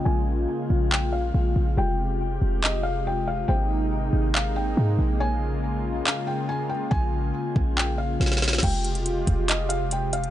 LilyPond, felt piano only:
\new Staff \with { instrumentName = "Felt piano" } { \time 4/4 \key f \minor \tempo 4 = 140 aes''2 g''8 f''4. | g''2 ees''8 f''8 g''8 f''8 | g''2 f''8 g''4. | aes''2 f''8 g''8 aes''8 g''8 |
aes''2 g''8 f''4. | g''2 ees''8 f''8 g''8 f''8 | }